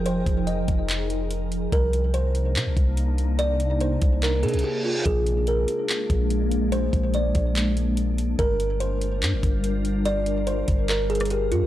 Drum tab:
HH |x---x---x---x---x---x---x---x---|x---x---x---x---x---x---x---x---|x---x---x---x---x---xxxx--------|x---x---x---x---x---x---x---x---|
CP |----------------x---------------|----------------x---------------|----------------x---------------|----------------x---------------|
SD |--------------------------------|--------------------------------|--------------------------------|--------------------------------|
BD |----o-------o-------------------|o-------------------o-----------|------------o-------------------|o-------------------o-----------|

HH |x---x---x---x---x---x---x---x---|x---x---x---x---x---x---x---x---|x---x---x---x---x---xxxxx---x---|
CP |----------------x---------------|----------------x---------------|----------------x---------------|
SD |--------------------------------|--------------------------------|----------------------r---------|
BD |----o-------o-------------------|o-------------------o-----------|------------o-------------------|